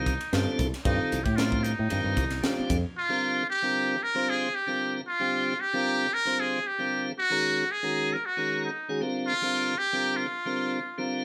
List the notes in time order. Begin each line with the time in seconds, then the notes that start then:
Already playing: C2 D#3 G3 C4 D#4 F4 A#4
0.06 kick, hi-hat pedal, ride
0.21 ride
0.33 G2 D3 G3 C4 F4 A4, snare, ride
0.59 C2, kick, hi-hat pedal, ride
0.74 snare, ride
0.85 G2 D#3 G3 C4 D#4 F4 A4, kick, ride
0.99 muted fingered electric bass stroke
1.12 C2, hi-hat pedal, ride
1.24 A2 G4, kick, ride
1.36 D3 G3 C4 F4 A#4, snare, ride
1.52 kick
1.64 D#4, hi-hat pedal, ride
1.79 A2
1.89 G2 D#3 G3 C4 F4 A#4, ride
2.04 G2
2.17 C2, kick, hi-hat pedal, ride
2.30 snare, ride
2.42 D3 G3 C4 F4 G4, snare, ride
2.59 muted fingered electric bass stroke
2.70 F2, kick, hi-hat pedal, ride
2.97 F4
3.09 D3 G3 C4 F4 A#4
3.50 G4
3.62 D3 G3 C4 F4 A#4
4.03 A#4
4.15 D3 G3 C4 F4 C5
4.30 G#4
4.55 G4
4.67 D3 G3 C4 F4 A#4
5.07 F4
5.19 D3 G3 C4 F4 G4
5.61 G4
5.73 D3 G3 C4 F4 A#4
6.13 A#4
6.25 D3 G3 C4 F4 C5
6.40 G#4
6.67 G4
6.78 D3 G3 C4 F4 A#4
7.19 F#4
7.30 D#3 G#3 C#4 F#4 A#4
7.72 G#4
7.83 D#3 G#3 C#4 F#4 A#4
8.13 A#4
8.25 F#4
8.37 D#3 G#3 C#4 F#4 A#4
8.65 D#4
8.89 D#3 G#3 C#4 F#4 G#4
9.01 D3 G3 C4 F4 A#4
9.26 F4
9.41 D3 G3 C4 F4 A#4
9.78 G4
9.93 D3 G3 C4 F4 A#4
10.17 F4
10.45 D3 G3 C4 F4 A#4
10.98 D3 G3 C4 F4 A#4